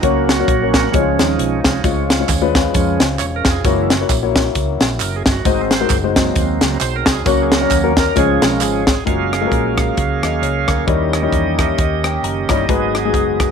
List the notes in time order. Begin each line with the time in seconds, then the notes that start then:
Already playing: F#4
0.02 C#2 C#3 F#3 A#3 C#4 F#4 C#5, kick, closed hi-hat
0.29 snare, closed hi-hat
0.39 A#3 C#4 F#4 C#5
0.48 A#1, kick, closed hi-hat
0.62 A#3 C#4 F#4 C#5
0.73 F#4, kick, snare, closed hi-hat
0.91 C#2 C#3 F3 G#3 C#4 D#4 F4 C#5, kick, closed hi-hat
0.99 F4
1.19 D#2 D#4, snare, closed hi-hat
1.39 B1, closed hi-hat
1.64 C2 F3 G#3 C#4, kick, snare, closed hi-hat
1.84 C#2 G#3 C#4 F4 C#5, kick, closed hi-hat, tambourine
2.10 snare, closed hi-hat, tambourine
2.19 G#3 C#4 F4 C#5
2.29 D#2, kick, clap, closed hi-hat, tambourine
2.41 G#3 C#4 F4 B4
2.55 kick, snare, closed hi-hat, tambourine
2.73 F2 C#3 F3 G#3 C#4, kick, closed hi-hat, tambourine
3.00 C#2, snare, closed hi-hat, tambourine
3.19 E1 C#5, clap, closed hi-hat, tambourine
3.36 A#4
3.45 F1, kick, snare, closed hi-hat, tambourine
3.51 G#4
3.64 F#1 E3 F#3 G#3 A#3 E4 F#4 C#5, kick, closed hi-hat, tambourine
3.82 E4
3.90 snare, closed hi-hat, tambourine
3.97 A#3 E4 F#4 C#5
4.09 A#1, kick, clap, closed hi-hat, tambourine
4.23 A#3 E4 F#4 C#5
4.36 kick, snare, closed hi-hat, tambourine
4.55 C#2, kick, closed hi-hat, tambourine
4.80 A#1, snare, closed hi-hat, tambourine
5.00 F#1 A#4, clap, closed hi-hat, tambourine
5.16 G#4
5.26 G1, kick, snare, closed hi-hat, tambourine
5.32 F#4
5.45 G#1 G#2 F#3 G#3 C4 D#4 F#4 C5, kick, closed hi-hat, tambourine
5.61 C4
5.71 snare, closed hi-hat, tambourine
5.76 C5
5.81 G#3 D#4 F#4 A#4
5.90 F#1, kick, clap, closed hi-hat, tambourine
6.04 G#3 D#4 F#4 C5
6.16 F#3 A#3 C4, kick, snare, closed hi-hat, tambourine
6.35 D#2, kick, closed hi-hat, tambourine
6.61 C#2, snare, closed hi-hat, tambourine
6.81 B1 C5, clap, closed hi-hat, tambourine
6.96 A#4
7.06 C2, kick, snare, closed hi-hat, tambourine
7.12 G#4
7.25 C#2 C#3 F#3 A#3 C#4 F#4 C#5, kick, closed hi-hat, tambourine
7.42 G#4
7.52 snare, closed hi-hat, tambourine
7.57 A#4
7.61 A#3 C#4 F#4 C#5
7.70 D#2, kick, clap, closed hi-hat, tambourine
7.83 A#3 C#4 F#4 A#4
7.97 A#4, kick, snare, closed hi-hat, tambourine
8.15 C#2 C#3 F3 G#3 C#4 F4 G#4 C#5, kick, closed hi-hat, tambourine
8.42 B1, snare, closed hi-hat, tambourine
8.47 A#4
8.61 G#1 G#4, clap, closed hi-hat, tambourine
8.87 kick, snare, closed hi-hat, tambourine
9.06 F#1 F#3 G#3 A#3 C#4 F4 F#4 G#4 A#4 F5, kick, closed hi-hat
9.33 cross-stick, closed hi-hat
9.41 G#3 F4 F#4 A4
9.47 A#4
9.52 A#1, kick, closed hi-hat
9.78 kick, cross-stick, closed hi-hat
9.97 C#2, kick, closed hi-hat
10.22 D#2 D#5, cross-stick, closed hi-hat
10.42 C#2 C#5, closed hi-hat
10.67 D2 A#4, kick, cross-stick, closed hi-hat
10.87 D#2 D#3 G3 A#3 C#4 D#4 E4 G4 C#5 D#5, kick, closed hi-hat
11.13 cross-stick, closed hi-hat
11.22 G3 D#4 E4 C#5
11.32 E2, kick, closed hi-hat
11.59 E5, kick, cross-stick, closed hi-hat
11.78 D#2 D#5, kick, closed hi-hat
12.04 G5, cross-stick, closed hi-hat
12.23 F#1 A#5, closed hi-hat
12.49 G1 G3 D#4 E4 C#5 A#5, kick, cross-stick, closed hi-hat
12.67 G#1 G#2 F#3 G#3 B3 D#4 F#4 G#4 B4, kick, closed hi-hat
12.95 cross-stick, closed hi-hat
13.05 G#3 D#4 F#4 G#4
13.14 F#1, kick, closed hi-hat
13.40 kick, cross-stick, closed hi-hat